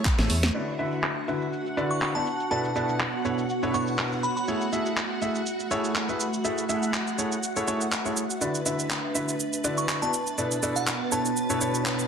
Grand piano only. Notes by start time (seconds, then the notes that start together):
0.19 A3 E4 G#4 A4 C#5
0.54 D3 E4 F#4 B4 D5
0.79 D3 E4 F#4 B4 E5
1.28 D3 E4 F#4 B4 E5
1.77 D3 E4 F#4 B4 D5
2.15 B3 E4 F#4 B4 D5
2.51 B2 D4 E4 A4 B4 D5
2.76 B2 D4 E4 A4 B4 D5
3.25 B2 D4 E4 A4 B4 C#5
3.63 B2 D4 E4 A4 B4 C#5
3.74 B2 D4 E4 A4 B4 C#5
4.48 A3 E4 G#4 A4 C#5
4.72 A3 E4 G#4 A4 E5
5.22 A3 E4 G#4 A4 E5
5.71 A3 E4 G#4 A4 C#5
6.09 A3 E4 G#4 A4 B4
6.44 A3 E4 G#4 A4 E5
6.69 A3 E4 G#4 A4 E5
7.18 A3 E4 G#4 A4 C#5
7.56 A3 E4 G#4 A4 C#5
7.68 A3 E4 G#4 A4 C#5
8.05 A3 E4 G#4 A4 C#5
8.41 D3 E4 F#4 B4 D5
8.66 D3 E4 F#4 B4 E5
9.15 D3 E4 F#4 B4 E5
9.64 D3 E4 F#4 B4 D5
10.02 B3 E4 F#4 B4 D5
10.38 B2 D4 E4 A4 B4 D5
10.63 B2 D4 E4 A4 B4 D5
11.12 B2 D4 E4 A4 B4 C#5
11.50 B2 D4 E4 A4 B4 C#5
11.61 B2 D4 E4 A4 B4 C#5